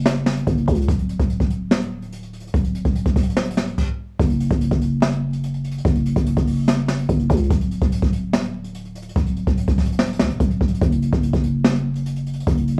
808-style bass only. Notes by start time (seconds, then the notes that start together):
Already playing: F#1
0.47 F#1
0.68 C#2
0.88 D1
1.19 D1
1.40 D1
2.54 D1
2.85 D1
3.06 D1
3.16 D1
4.19 F#1
4.51 F#1
4.71 F#1
5.85 F#1
6.16 F#1
6.37 F#1
7.09 F#1
7.30 C#2
7.50 D1
7.82 D1
8.02 D1
9.16 D1
9.47 D1
9.68 D1
10.19 D2
10.30 D1
10.40 D1
10.61 D1
10.81 F#1
11.13 F#1
11.33 F#1
12.47 F#1